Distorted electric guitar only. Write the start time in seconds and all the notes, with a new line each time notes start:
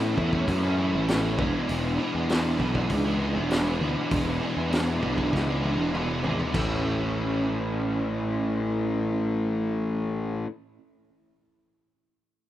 Already playing: A2 E3 A3 C#4 E4
0.17 E3 A3 C#4 E4
0.31 A3 C#4 E4
0.62 A3 C#4 E4
0.77 E3 A3 C#4 E4
0.92 A3 C#4 E4
1.07 A2 E3 A3 C#4 E4
1.37 E2 B2 E3 G#3 B3 E4
1.52 E3 G#3 B3 E4
1.67 E2 B2 E3 G#3 B3 E4
1.82 E3 G#3 B3 E4
1.98 E3 G#3 B3 E4
2.28 E2 B2 E3 G#3 B3 E4
2.58 E3 G#3 B3 E4
2.73 E3 G#3 B3 E4
3.04 E3 G#3 B3 E4
3.20 E3 G#3 B3 E4
3.35 E3 G#3 B3 E4
3.50 E2 B2 E3 G#3 B3 E4
3.80 E3 G#3 B3 E4
3.96 E3 G#3 B3 E4
4.10 E2 B2 E3 G#3 B3 E4
4.25 E3 G#3 B3 E4
4.40 E3 G#3 B3 E4
4.71 E2 B2 E3 G#3 B3 E4
5.01 E3 G#3 B3 E4
5.16 E3 G#3 B3 E4
5.46 E3 G#3 B3 E4
5.61 E3 G#3 B3 E4
5.76 E3 G#3 B3 E4
5.91 E2 B2 E3 G#3 B3 E4
6.22 E3 G#3 B3 E4
6.37 E3 G#3 B3 E4
6.52 A2 E3 A3 C#4
6.56 E4